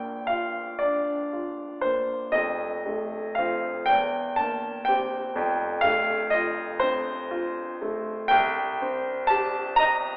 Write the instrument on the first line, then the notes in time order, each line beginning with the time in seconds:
grand piano
Already playing: A#1 A#2 A#3 G5 A5
0.27 F4 F5
0.79 D4 D5
1.33 F4
1.81 A#3 C5
2.32 F1 F2 D#5
2.86 A3
3.35 C4 F4 F5
3.86 E2 G5
4.36 A#3 A5
4.85 C4 G4 G5
5.35 F1 F2
5.81 A3 F5
6.30 F4 D#5
6.80 C4 C5
7.31 F4
7.82 A3
8.28 C2 G5
8.82 C4
9.27 G4 A5
9.76 D#5 A#5